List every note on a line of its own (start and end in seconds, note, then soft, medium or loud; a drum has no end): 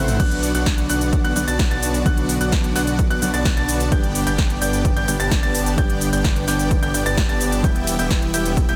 0.00 0.17 A1 loud
0.00 0.16 C3 medium
0.00 0.16 A3 medium
0.00 0.17 A3 medium
0.00 0.17 C4 medium
0.00 0.16 E4 medium
0.00 0.17 E4 medium
0.00 0.17 C5 medium
0.00 0.17 F#5 medium
0.00 0.17 F#6 loud
0.08 closed hi-hat soft
0.08 mid tom medium
0.08 shaker soft
0.18 0.52 B1 loud
0.18 1.33 D3 medium
0.18 3.88 D3 medium
0.18 1.33 F#3 medium
0.18 0.52 B3 medium
0.18 8.76 B3 medium
0.18 1.33 B3 medium
0.18 0.52 D4 medium
0.18 1.34 D4 loud
0.18 0.52 F#4 medium
0.18 3.88 F#4 medium
0.18 0.52 D5 medium
0.18 0.52 F#5 loud
0.18 0.52 F#6 loud
0.18 kick loud
0.18 closed hi-hat medium
0.18 crash medium
0.18 shaker soft
0.31 closed hi-hat soft
0.43 open hi-hat loud
0.43 shaker medium
0.55 0.87 B1 loud
0.55 0.87 B3 medium
0.55 0.87 D4 medium
0.55 0.87 F#4 medium
0.55 0.87 D5 medium
0.55 0.87 F#5 medium
0.55 0.87 F#6 medium
0.55 closed hi-hat soft
0.55 shaker soft
0.66 kick loud
0.66 snare loud
0.66 closed hi-hat medium
0.66 shaker soft
0.78 closed hi-hat soft
0.89 1.22 B1 loud
0.89 1.22 B3 medium
0.89 1.22 D4 medium
0.89 1.22 F#4 medium
0.89 1.22 D5 medium
0.89 1.22 F#5 medium
0.89 1.22 F#6 medium
0.89 open hi-hat loud
0.89 shaker medium
1.01 closed hi-hat soft
1.01 shaker soft
1.13 kick loud
1.13 closed hi-hat medium
1.13 shaker soft
1.24 1.34 B1 medium
1.24 1.34 B3 loud
1.24 1.34 D4 medium
1.24 1.34 F#4 medium
1.24 1.34 D5 medium
1.24 1.34 F#5 loud
1.24 1.34 F#6 loud
1.24 closed hi-hat soft
1.35 1.45 B1 medium
1.35 1.41 D3 loud
1.35 1.42 F#3 medium
1.35 1.46 B3 medium
1.35 1.42 B3 medium
1.35 1.46 D4 medium
1.35 1.42 D4 loud
1.35 1.46 F#4 medium
1.35 1.46 D5 medium
1.35 1.46 F#5 medium
1.35 1.46 F#6 medium
1.35 open hi-hat loud
1.35 shaker medium
1.47 1.69 B1 loud
1.47 1.68 B3 loud
1.47 1.68 D4 medium
1.47 1.68 F#4 medium
1.47 1.68 D5 medium
1.47 1.68 A5 loud
1.47 1.68 A6 loud
1.47 closed hi-hat soft
1.47 shaker soft
1.59 kick loud
1.59 snare loud
1.59 closed hi-hat medium
1.59 shaker soft
1.71 2.03 B1 loud
1.71 2.03 B3 medium
1.71 2.03 D4 medium
1.71 2.03 F#4 medium
1.71 2.03 D5 medium
1.71 2.03 A5 loud
1.71 2.03 A6 loud
1.71 closed hi-hat soft
1.83 open hi-hat loud
1.83 shaker medium
1.94 closed hi-hat soft
1.94 shaker soft
2.05 2.38 B1 loud
2.05 3.19 D3 medium
2.05 3.19 F#3 medium
2.05 2.38 B3 medium
2.05 3.19 B3 medium
2.05 2.38 D4 medium
2.05 3.20 D4 loud
2.05 2.38 F#4 medium
2.05 2.38 D5 medium
2.05 2.38 F#5 loud
2.05 2.38 F#6 loud
2.05 kick loud
2.05 closed hi-hat medium
2.05 shaker soft
2.18 closed hi-hat soft
2.29 open hi-hat loud
2.29 shaker medium
2.41 2.73 B1 loud
2.41 2.73 B3 medium
2.41 2.73 D4 medium
2.41 2.73 F#4 medium
2.41 2.73 D5 medium
2.41 2.73 F#5 medium
2.41 2.73 F#6 medium
2.41 closed hi-hat soft
2.41 shaker soft
2.52 kick loud
2.52 snare loud
2.52 closed hi-hat medium
2.52 shaker soft
2.64 closed hi-hat soft
2.75 3.08 B1 medium
2.75 3.08 B3 medium
2.75 3.08 D4 medium
2.75 3.08 F#4 medium
2.75 3.08 D5 medium
2.75 3.08 F#5 medium
2.75 3.08 F#6 medium
2.75 snare soft
2.75 open hi-hat loud
2.75 shaker medium
2.87 closed hi-hat soft
2.87 shaker soft
2.99 kick loud
2.99 closed hi-hat medium
2.99 shaker soft
3.10 3.20 B1 loud
3.10 3.20 B3 loud
3.10 3.20 D4 medium
3.10 3.20 F#4 medium
3.10 3.20 D5 medium
3.10 3.20 F#5 loud
3.10 3.20 F#6 loud
3.10 closed hi-hat soft
3.22 3.31 B1 loud
3.22 3.27 D3 loud
3.22 3.28 F#3 medium
3.22 3.32 B3 medium
3.22 3.28 B3 medium
3.22 3.32 D4 medium
3.22 3.28 D4 loud
3.22 3.32 F#4 medium
3.22 3.32 D5 medium
3.22 3.32 F#5 medium
3.22 3.32 F#6 medium
3.22 open hi-hat loud
3.22 shaker medium
3.34 3.55 B1 loud
3.34 3.54 B3 loud
3.34 3.54 D4 medium
3.34 3.54 F#4 medium
3.34 3.54 D5 medium
3.34 3.54 A5 loud
3.34 3.54 A6 loud
3.34 closed hi-hat soft
3.34 shaker soft
3.45 kick loud
3.45 snare loud
3.45 closed hi-hat medium
3.45 shaker soft
3.57 3.90 B1 loud
3.57 3.89 B3 medium
3.57 3.89 D4 medium
3.57 3.89 F#4 medium
3.57 3.89 D5 medium
3.57 3.89 A5 loud
3.57 3.89 A6 loud
3.57 closed hi-hat soft
3.69 open hi-hat loud
3.69 shaker medium
3.80 closed hi-hat soft
3.80 shaker soft
3.91 4.24 G1 loud
3.91 5.05 G2 loud
3.91 5.05 D3 medium
3.91 7.60 D3 medium
3.91 5.05 G3 medium
3.91 4.24 B3 medium
3.91 5.06 B3 medium
3.91 4.24 D4 medium
3.91 5.06 D4 loud
3.91 4.24 G4 medium
3.91 8.76 G4 medium
3.91 4.24 D5 medium
3.91 4.24 G5 loud
3.91 4.24 G6 medium
3.91 kick loud
3.91 closed hi-hat medium
3.91 shaker soft
4.04 closed hi-hat soft
4.15 open hi-hat loud
4.15 shaker medium
4.27 4.59 G1 loud
4.27 4.59 B3 medium
4.27 4.59 D4 medium
4.27 4.59 G4 medium
4.27 4.59 D5 medium
4.27 4.59 G5 medium
4.27 4.59 G6 medium
4.27 closed hi-hat soft
4.27 shaker soft
4.38 kick loud
4.38 snare loud
4.38 closed hi-hat medium
4.38 shaker soft
4.50 closed hi-hat soft
4.62 4.94 G1 loud
4.62 4.94 B3 medium
4.62 4.94 D4 medium
4.62 4.94 G4 medium
4.62 4.94 D5 medium
4.62 4.94 G5 medium
4.62 4.94 G6 medium
4.62 open hi-hat loud
4.62 shaker medium
4.73 closed hi-hat soft
4.73 shaker soft
4.85 kick loud
4.85 closed hi-hat medium
4.85 shaker soft
4.96 5.06 G1 medium
4.96 5.06 B3 loud
4.96 5.06 D4 medium
4.96 5.06 G4 medium
4.96 5.06 D5 medium
4.96 5.06 G5 loud
4.96 5.06 G6 loud
4.96 closed hi-hat soft
5.07 5.17 G1 medium
5.07 5.14 G2 loud
5.07 5.14 D3 medium
5.07 5.14 G3 medium
5.07 5.18 B3 medium
5.07 5.14 B3 medium
5.07 5.18 D4 medium
5.07 5.14 D4 loud
5.07 5.18 G4 medium
5.07 5.18 D5 medium
5.07 5.18 G5 medium
5.07 5.18 G6 medium
5.07 open hi-hat loud
5.07 shaker medium
5.20 5.41 G1 loud
5.20 5.40 B3 loud
5.20 5.40 D4 medium
5.20 5.40 G4 medium
5.20 5.40 D5 medium
5.20 5.40 A5 loud
5.20 5.40 A6 loud
5.20 closed hi-hat soft
5.20 shaker soft
5.31 kick loud
5.31 snare loud
5.31 closed hi-hat medium
5.31 shaker soft
5.43 5.76 G1 loud
5.43 5.75 B3 medium
5.43 5.75 D4 medium
5.43 5.75 G4 medium
5.43 5.75 D5 medium
5.43 5.75 A5 loud
5.43 5.75 A6 loud
5.43 closed hi-hat soft
5.55 open hi-hat loud
5.55 shaker medium
5.66 closed hi-hat soft
5.66 shaker soft
5.77 6.10 G1 loud
5.77 6.91 G2 medium
5.77 6.91 D3 medium
5.77 6.91 G3 medium
5.77 6.10 B3 medium
5.77 6.92 B3 medium
5.77 6.10 D4 medium
5.77 6.92 D4 loud
5.77 6.10 G4 medium
5.77 6.10 D5 medium
5.77 6.10 G5 loud
5.77 6.10 G6 loud
5.77 kick loud
5.77 closed hi-hat medium
5.77 shaker soft
5.90 closed hi-hat soft
6.01 open hi-hat loud
6.01 shaker medium
6.13 6.45 G1 loud
6.13 6.45 B3 medium
6.13 6.45 D4 medium
6.13 6.45 G4 medium
6.13 6.45 D5 medium
6.13 6.45 G5 medium
6.13 6.45 G6 medium
6.13 closed hi-hat soft
6.13 shaker soft
6.24 kick loud
6.24 snare loud
6.24 closed hi-hat medium
6.24 shaker soft
6.36 closed hi-hat soft
6.48 6.80 G1 loud
6.48 6.80 B3 medium
6.48 6.80 D4 medium
6.48 6.80 G4 medium
6.48 6.80 D5 medium
6.48 6.80 G5 medium
6.48 6.80 G6 medium
6.48 snare soft
6.48 open hi-hat loud
6.48 shaker medium
6.59 closed hi-hat soft
6.59 shaker soft
6.71 kick loud
6.71 closed hi-hat medium
6.71 shaker soft
6.82 6.92 G1 loud
6.82 6.92 B3 loud
6.82 6.92 D4 medium
6.82 6.92 G4 medium
6.82 6.92 D5 medium
6.82 6.92 G5 loud
6.82 6.92 G6 loud
6.82 closed hi-hat soft
6.94 7.04 G1 loud
6.94 7.04 B3 medium
6.94 7.04 D4 medium
6.94 7.04 G4 medium
6.94 7.04 D5 medium
6.94 7.04 G5 medium
6.94 7.04 G6 medium
6.94 open hi-hat loud
6.94 shaker medium
7.06 7.27 G1 loud
7.06 7.26 B3 loud
7.06 7.26 D4 medium
7.06 7.26 G4 medium
7.06 7.26 D5 loud
7.06 7.26 A5 loud
7.06 7.26 A6 loud
7.06 closed hi-hat soft
7.06 shaker soft
7.17 kick loud
7.17 snare loud
7.17 closed hi-hat medium
7.17 shaker soft
7.29 7.62 G1 loud
7.29 7.61 B3 medium
7.29 7.61 D4 medium
7.29 7.61 G4 medium
7.29 7.61 D5 medium
7.29 7.61 A5 loud
7.29 7.61 A6 loud
7.29 closed hi-hat soft
7.41 open hi-hat loud
7.41 shaker medium
7.52 closed hi-hat soft
7.52 shaker soft
7.63 7.97 E1 loud
7.63 8.76 E3 medium
7.63 8.76 G3 medium
7.63 7.96 B3 medium
7.63 8.76 B3 medium
7.63 7.96 E4 medium
7.63 8.76 E4 loud
7.63 7.96 G4 medium
7.63 7.96 E5 medium
7.63 7.96 G5 medium
7.63 7.96 G6 medium
7.63 kick loud
7.63 closed hi-hat medium
7.63 shaker soft
7.76 closed hi-hat soft
7.87 open hi-hat loud
7.87 ride medium
7.87 shaker medium
7.99 8.31 E1 loud
7.99 8.31 B3 medium
7.99 8.31 E4 medium
7.99 8.31 G4 medium
7.99 8.31 E5 medium
7.99 8.31 G5 medium
7.99 8.31 G6 medium
7.99 closed hi-hat soft
7.99 shaker soft
8.11 kick loud
8.11 snare loud
8.11 closed hi-hat medium
8.11 shaker soft
8.22 closed hi-hat soft
8.34 8.66 E1 medium
8.34 8.66 B3 medium
8.34 8.66 E4 medium
8.34 8.66 G4 medium
8.34 8.66 E5 medium
8.34 8.66 G5 medium
8.34 8.66 G6 medium
8.34 open hi-hat loud
8.34 ride medium
8.34 shaker medium
8.45 closed hi-hat soft
8.45 shaker soft
8.57 kick loud
8.57 closed hi-hat medium
8.57 shaker soft
8.69 8.76 E1 medium
8.69 8.76 B3 loud
8.69 8.76 E4 medium
8.69 8.76 G4 medium
8.69 8.76 E5 medium
8.69 8.76 G5 loud
8.69 8.76 G6 loud
8.69 closed hi-hat soft